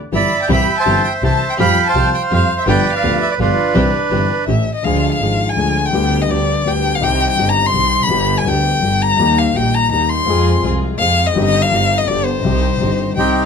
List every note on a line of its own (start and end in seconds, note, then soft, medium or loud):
0.12 0.28 G1 medium
0.12 0.28 G2 medium
0.12 0.28 E3 soft
0.12 0.28 B3 soft
0.12 0.28 D4 soft
0.12 0.28 E4 soft
0.12 0.28 G4 medium
0.12 0.48 D5 medium
0.12 0.48 E5 medium
0.12 0.39 B5 medium
0.12 0.40 B5 medium
0.42 0.50 G5 medium
0.49 0.65 C2 medium
0.49 0.65 C3 medium
0.49 0.65 E3 medium
0.49 0.65 G3 medium
0.49 0.65 C4 medium
0.49 0.65 E4 medium
0.49 0.65 G4 medium
0.49 0.75 B5 medium
0.49 0.77 B5 medium
0.53 0.78 E5 medium
0.53 1.02 G5 medium
0.79 1.23 C5 medium
0.79 1.23 E5 medium
0.79 1.04 A5 medium
0.79 1.06 A5 loud
0.86 1.02 G1 medium
0.86 1.02 G2 medium
0.86 1.01 E3 soft
0.86 1.01 G3 soft
0.86 1.01 C4 soft
0.86 1.02 C4 soft
0.86 1.02 E4 soft
0.86 1.02 G4 medium
1.04 1.13 G5 medium
1.22 1.38 C2 medium
1.22 1.38 C3 medium
1.22 1.38 E3 soft
1.22 1.38 G3 soft
1.22 1.38 C4 soft
1.22 1.38 E4 soft
1.22 1.38 G4 medium
1.22 1.57 C5 medium
1.22 1.57 E5 medium
1.22 1.48 A5 medium
1.22 1.52 A5 medium
1.50 1.54 G5 medium
1.50 1.55 G5 medium
1.58 1.74 F2 medium
1.58 1.74 F3 medium
1.58 1.74 G3 medium
1.58 1.74 C4 medium
1.58 1.74 F4 medium
1.58 1.74 G4 medium
1.58 1.88 F5 medium
1.58 2.10 G5 medium
1.58 1.84 B5 medium
1.58 1.87 B5 loud
1.87 2.33 C5 medium
1.87 2.32 F5 medium
1.87 2.11 A5 medium
1.87 2.15 A5 medium
1.94 2.10 C2 medium
1.94 2.10 C3 medium
1.94 2.10 F3 medium
1.94 2.10 G3 soft
1.94 2.10 C4 soft
1.94 2.11 C4 soft
1.94 2.10 F4 soft
1.94 2.10 G4 soft
1.94 2.11 G4 medium
2.14 2.22 G5 medium
2.31 2.46 F2 medium
2.31 2.46 F3 medium
2.31 2.46 G3 soft
2.31 2.46 C4 soft
2.31 2.46 F4 soft
2.31 2.46 G4 medium
2.31 2.47 G4 medium
2.31 2.57 F5 medium
2.31 2.58 F5 medium
2.35 2.67 C5 medium
2.58 2.62 E5 medium
2.58 2.64 E5 medium
2.67 2.82 G1 medium
2.67 2.82 G2 medium
2.67 2.82 F3 medium
2.67 2.82 B3 medium
2.67 2.83 D4 medium
2.67 2.82 F4 medium
2.67 2.82 G4 medium
2.67 2.83 G4 medium
2.67 2.95 B4 medium
2.67 2.95 D5 medium
2.67 2.92 G5 medium
2.67 2.93 G5 medium
2.93 3.39 B4 medium
2.93 3.30 D5 medium
2.93 3.19 F5 medium
2.93 3.20 F5 medium
3.03 3.18 D2 medium
3.03 3.18 D3 medium
3.03 3.18 F3 medium
3.03 3.18 B3 soft
3.03 3.18 D4 soft
3.03 3.18 F4 soft
3.03 3.18 G4 medium
3.03 3.19 G4 medium
3.21 3.29 E5 medium
3.21 3.31 E5 medium
3.31 3.35 D5 medium
3.38 3.54 G1 medium
3.38 3.54 G2 medium
3.38 3.54 F3 soft
3.38 3.54 B3 soft
3.38 3.54 D4 soft
3.38 4.45 D4 medium
3.38 3.54 F4 soft
3.38 3.74 F4 soft
3.38 3.54 G4 medium
3.38 3.55 G4 medium
3.38 4.43 B4 medium
3.38 4.45 B4 medium
3.74 3.90 C2 medium
3.74 3.90 C3 medium
3.74 3.90 E3 medium
3.74 3.90 G3 medium
3.74 3.90 C4 medium
3.74 3.90 E4 medium
3.74 3.90 G4 medium
3.74 3.91 G4 medium
4.11 4.26 G1 medium
4.11 4.27 G1 medium
4.11 4.27 G2 medium
4.11 4.27 E3 soft
4.11 4.27 G3 soft
4.11 4.26 C4 soft
4.11 4.27 C4 soft
4.11 4.27 E4 soft
4.11 4.27 G4 soft
4.11 4.27 G4 medium
4.47 4.63 A1 medium
4.47 4.63 A2 medium
4.47 4.63 E3 soft
4.47 4.63 A3 soft
4.47 4.63 C#4 soft
4.47 4.63 G4 medium
4.47 4.63 G4 soft
4.47 4.73 E5 medium
4.75 4.86 D#5 medium
4.83 5.19 D2 medium
4.83 5.19 D3 medium
4.83 5.18 F3 medium
4.83 5.19 G#3 medium
4.83 5.19 D4 medium
4.83 5.19 F4 medium
4.83 5.20 G#4 medium
4.83 5.12 F5 medium
5.12 5.51 F5 medium
5.19 5.55 G#1 medium
5.19 5.55 G#1 soft
5.19 5.55 G#2 soft
5.19 5.53 F3 soft
5.19 5.55 G#3 soft
5.19 5.55 D4 soft
5.19 5.56 D4 soft
5.19 5.55 F4 soft
5.19 5.56 G#4 soft
5.50 5.87 G#5 medium
5.55 5.91 D2 soft
5.55 5.91 D2 medium
5.55 5.89 D3 soft
5.55 5.90 F3 soft
5.55 5.91 G#3 soft
5.55 5.92 G#3 soft
5.55 5.92 D4 soft
5.55 5.92 F4 soft
5.59 5.92 G#4 soft
5.86 6.23 G5 medium
5.91 6.27 D2 medium
5.91 6.26 D3 medium
5.91 6.27 G3 medium
5.91 6.27 B3 medium
5.91 6.28 B3 medium
5.91 6.28 D4 medium
5.91 6.28 G4 medium
6.22 6.33 D#5 medium
6.27 6.63 D2 soft
6.27 6.63 D2 medium
6.27 6.62 D3 soft
6.27 6.63 G3 soft
6.27 6.63 B3 soft
6.27 6.64 B3 soft
6.27 6.64 D4 soft
6.27 6.64 G4 medium
6.27 6.64 G4 soft
6.31 6.69 D5 medium
6.63 6.99 D2 soft
6.63 7.00 D2 medium
6.63 6.99 D3 soft
6.63 6.99 G3 soft
6.63 7.00 B3 soft
6.63 7.00 D4 soft
6.63 7.00 G4 soft
6.68 6.97 G5 medium
6.95 7.05 F5 medium
6.99 7.36 C2 medium
6.99 7.36 C3 medium
6.99 7.34 D#3 medium
6.99 7.35 G3 medium
6.99 7.36 C4 medium
6.99 7.36 D#4 medium
6.99 7.36 G4 medium
7.04 7.37 G4 medium
7.04 7.30 G5 loud
7.30 7.51 G5 medium
7.35 7.72 G1 medium
7.35 7.72 G2 soft
7.35 7.70 D#3 soft
7.35 7.71 G3 soft
7.35 7.72 C4 soft
7.35 7.72 D#4 soft
7.35 7.72 G4 soft
7.35 7.73 G4 soft
7.49 7.67 A#5 medium
7.66 8.04 C6 loud
7.72 8.08 C2 soft
7.72 8.08 C2 medium
7.72 8.08 C3 soft
7.72 8.07 D#3 soft
7.72 8.07 G3 soft
7.72 8.08 C4 soft
7.72 8.08 D#4 soft
7.72 8.08 G4 medium
7.72 8.09 G4 soft
8.03 8.39 B5 medium
8.07 8.44 G1 medium
8.07 8.45 G1 medium
8.07 8.44 G2 medium
8.07 8.42 D3 medium
8.07 8.43 G3 medium
8.07 8.44 B3 medium
8.07 8.44 B3 soft
8.07 8.44 D4 medium
8.07 8.44 G4 medium
8.11 8.45 G4 medium
8.38 8.49 G#5 medium
8.43 8.80 D2 soft
8.43 8.81 D2 medium
8.43 8.45 D3 soft
8.43 8.79 D3 soft
8.43 8.80 G3 soft
8.43 8.80 B3 soft
8.43 8.81 B3 soft
8.43 8.80 D4 soft
8.43 8.80 G4 soft
8.48 8.81 G4 soft
8.48 9.04 G5 medium
8.80 9.17 G1 soft
8.80 9.17 G1 medium
8.80 9.17 G2 soft
8.80 9.16 D3 soft
8.80 9.17 G3 soft
8.80 9.17 B3 soft
8.80 9.17 D4 soft
8.80 9.17 G4 soft
8.80 9.18 G4 soft
9.02 9.41 A#5 loud
9.17 9.54 D#2 medium
9.17 9.19 D#3 medium
9.17 9.52 D#3 medium
9.17 9.53 G3 medium
9.17 9.53 A#3 medium
9.17 9.54 A#3 medium
9.17 9.53 D#4 medium
9.17 9.53 G4 medium
9.21 9.55 G4 medium
9.39 9.58 F5 medium
9.53 9.89 A#1 soft
9.53 9.90 A#1 medium
9.53 9.89 A#2 soft
9.53 9.88 D#3 soft
9.53 9.89 G3 soft
9.53 9.89 A#3 soft
9.53 9.90 A#3 soft
9.53 9.89 D#4 soft
9.53 9.89 G4 soft
9.53 9.90 G4 soft
9.53 9.76 G5 medium
9.75 9.91 A#5 medium
9.90 10.26 D#2 medium
9.90 10.26 D#2 soft
9.90 10.26 D#3 soft
9.90 10.25 G3 soft
9.90 10.25 A#3 soft
9.90 10.26 A#3 soft
9.90 10.26 D#4 soft
9.90 10.26 G4 medium
9.90 10.27 G4 soft
9.90 10.11 A#5 medium
10.09 10.63 C6 medium
10.26 10.61 F2 medium
10.26 10.62 F2 medium
10.26 10.27 F3 medium
10.26 10.61 F3 medium
10.26 10.62 G#3 medium
10.26 10.61 C4 medium
10.26 10.62 C4 medium
10.26 10.61 F4 medium
10.26 10.61 G#4 medium
10.26 10.63 G#4 medium
10.62 10.98 C2 soft
10.62 10.98 C2 medium
10.62 10.98 C3 soft
10.62 10.96 F3 soft
10.62 10.97 G#3 soft
10.62 10.97 C4 soft
10.62 10.98 C4 soft
10.62 10.97 F4 soft
10.62 10.97 G#4 medium
10.66 10.99 G#4 soft
10.98 11.34 F2 soft
10.98 11.34 F2 medium
10.98 10.99 F3 soft
10.98 11.34 F3 medium
10.98 11.33 G#3 soft
10.98 11.33 C4 soft
10.98 11.34 C4 soft
10.98 11.33 F4 soft
10.98 11.33 G#4 medium
10.98 11.28 F5 loud
11.02 11.35 G#4 soft
11.26 11.44 D#5 medium
11.34 11.70 G1 medium
11.34 11.70 G2 medium
11.34 11.68 D#3 medium
11.34 11.69 G3 medium
11.34 11.69 C4 medium
11.34 11.70 C4 medium
11.34 11.69 D#4 medium
11.34 11.69 G4 medium
11.34 11.71 G4 medium
11.45 11.64 D#5 loud
11.62 12.00 F5 loud
11.70 12.06 G1 medium
11.70 12.06 G2 medium
11.70 12.05 D#3 soft
11.70 12.06 G3 soft
11.70 12.05 C4 soft
11.70 12.06 C4 soft
11.70 12.05 D#4 soft
11.70 12.06 G4 soft
11.74 12.07 G4 soft
11.98 12.09 D#5 medium
12.06 12.42 G1 medium
12.06 12.42 G1 soft
12.06 12.42 G2 soft
12.06 12.41 D3 soft
12.06 12.42 G3 soft
12.06 12.42 B3 soft
12.06 12.43 B3 soft
12.06 12.42 D4 soft
12.06 12.42 G4 medium
12.06 12.27 D5 medium
12.10 12.44 G4 soft
12.25 13.16 C5 medium
12.42 12.79 C2 medium
12.42 12.79 C3 medium
12.42 12.77 D#3 medium
12.42 12.78 G3 medium
12.42 12.78 C4 medium
12.42 12.79 C4 medium
12.42 12.78 D#4 medium
12.42 12.78 G4 medium
12.46 12.80 G4 medium
12.78 13.15 G1 medium
12.78 13.15 G1 soft
12.78 13.15 G2 soft
12.78 13.14 D#3 soft
12.78 13.15 G3 soft
12.78 13.14 C4 soft
12.78 13.15 C4 soft
12.78 13.14 D#4 soft
12.78 13.15 G4 soft
12.82 13.16 G4 soft
13.15 13.45 C2 medium
13.15 13.45 C2 soft
13.15 13.45 C3 soft
13.15 13.45 D#3 soft
13.15 13.45 G3 soft
13.15 13.45 C4 soft
13.15 13.45 C4 medium
13.15 13.45 D#4 soft
13.15 13.45 D#4 medium
13.15 13.45 G4 soft
13.15 13.43 G4 medium
13.15 13.45 G4 soft
13.15 13.42 G5 medium